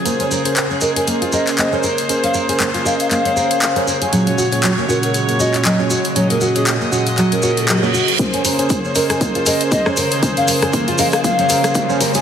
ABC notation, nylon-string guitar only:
X:1
M:4/4
L:1/16
Q:"Swing 16ths" 1/4=118
K:Bbm
V:1 name="Nylon-string guitar"
B, D B z2 D B A B, F B z B, D B z | z D B A B, F B z B, D B z2 D B A | G, D G z G, B, G z2 B, G F G, D G z | G, B, G z2 B, G F G, D G z G, B, G z |
B, D B z2 D B A B, F B z B, D B z | z D B A B, F B z B, D B z2 D B A |]